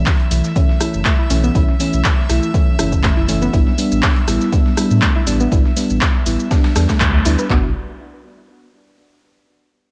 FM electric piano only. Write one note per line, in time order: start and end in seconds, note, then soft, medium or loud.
0.00 0.28 E3 medium
0.00 0.28 A3 medium
0.00 0.29 C#4 medium
0.31 0.53 E3 medium
0.31 0.53 A3 medium
0.31 0.53 E4 medium
0.56 0.78 E3 medium
0.56 0.78 A3 medium
0.56 0.78 C#4 medium
0.80 1.27 E3 medium
0.80 1.28 A3 medium
0.80 1.28 C#4 medium
1.30 1.52 E3 medium
1.30 1.52 A3 medium
1.30 1.53 C#4 loud
1.55 1.74 E3 medium
1.55 1.74 A3 medium
1.55 1.74 C#4 medium
1.80 2.27 E3 medium
1.80 2.27 A3 medium
1.80 2.27 C#4 loud
2.29 2.51 E3 medium
2.29 2.52 A3 medium
2.29 2.52 E4 medium
2.54 2.76 E3 medium
2.54 2.76 A3 medium
2.54 2.76 C#4 loud
2.79 3.26 E3 medium
2.79 3.26 A3 medium
2.79 3.26 C#4 medium
3.28 3.50 E3 medium
3.28 3.51 A3 medium
3.28 3.51 C#4 loud
3.53 3.72 G3 medium
3.53 3.72 B3 medium
3.53 3.73 D4 loud
3.78 4.25 G3 medium
3.78 4.25 B3 medium
3.78 4.25 D4 loud
4.27 4.50 G3 medium
4.27 4.50 B3 medium
4.27 4.50 E4 medium
4.52 4.74 G3 medium
4.52 4.75 B3 medium
4.52 4.75 D4 medium
4.77 5.24 G3 medium
4.77 5.24 B3 medium
4.77 5.24 D4 medium
5.27 5.49 G3 medium
5.27 5.49 B3 medium
5.27 5.49 D4 loud
5.51 5.71 G3 medium
5.51 5.71 B3 medium
5.51 5.71 D4 loud
5.76 6.23 G3 medium
5.76 6.23 B3 medium
5.76 6.24 D4 loud
6.26 6.48 G3 medium
6.26 6.48 B3 medium
6.26 6.48 E4 medium
6.51 6.73 G3 medium
6.51 6.73 B3 medium
6.51 6.73 D4 medium
6.75 7.22 G3 medium
6.75 7.23 B3 medium
6.75 7.23 D4 medium
7.25 7.47 G3 medium
7.25 7.47 B3 medium
7.25 7.48 D4 medium
7.49 7.68 B3 medium
7.49 7.69 D4 medium
7.49 7.70 F#4 loud